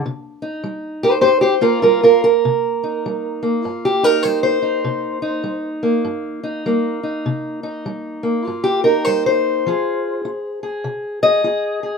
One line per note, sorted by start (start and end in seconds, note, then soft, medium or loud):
0.06 0.60 C3 medium
0.42 1.61 D#4 soft
0.64 1.19 G3 medium
1.03 1.12 G4 medium
1.03 1.20 C5 medium
1.21 1.79 G2 medium
1.21 1.28 G4 medium
1.21 1.41 C5 medium
1.41 1.53 G4 medium
1.41 1.63 C5 medium
1.61 3.42 A#3 soft
1.61 1.81 F4 medium
1.61 1.82 A#4 medium
1.82 2.39 G3 medium
1.82 2.02 F4 medium
1.82 2.03 A#4 medium
2.03 2.24 F4 medium
2.03 2.23 A#4 medium
2.24 3.44 A#4 medium
2.45 3.00 C3 medium
2.83 3.64 D#4 soft
3.06 3.61 G3 medium
3.43 5.82 A#3 soft
3.64 4.20 G2 medium
3.64 4.01 F4 medium
3.85 4.04 G4 medium
4.03 4.62 D#4 soft
4.03 4.23 A#4 medium
4.23 4.80 G3 medium
4.23 4.42 C5 medium
4.43 5.64 C5 medium
4.62 5.22 D#4 soft
4.84 5.40 C3 medium
5.22 6.43 D#4 soft
5.44 6.00 G3 medium
5.83 6.65 A#3 soft
6.05 6.60 G2 medium
6.43 7.03 D#4 soft
6.66 7.21 G3 medium
6.66 8.22 A#3 soft
7.03 7.63 D#4 soft
7.26 7.81 C3 medium
7.63 8.45 D#4 soft
7.86 8.41 G3 medium
8.23 9.65 A#3 soft
8.45 9.02 G2 medium
8.45 8.82 F4 medium
8.64 8.84 G4 medium
8.84 9.68 D#4 soft
8.84 9.05 A#4 medium
9.05 9.61 G3 medium
9.05 9.25 C5 medium
9.26 10.45 C5 medium
9.66 10.21 F3 medium
9.66 10.25 F4 soft
9.66 10.62 G#4 soft
10.25 10.80 F4 medium
10.63 11.21 G#4 soft
10.84 11.40 C3 medium
11.23 11.43 G#4 soft
11.23 11.98 D#5 loud
11.44 11.98 F4 medium
11.44 11.81 G#4 soft
11.83 11.98 G#4 soft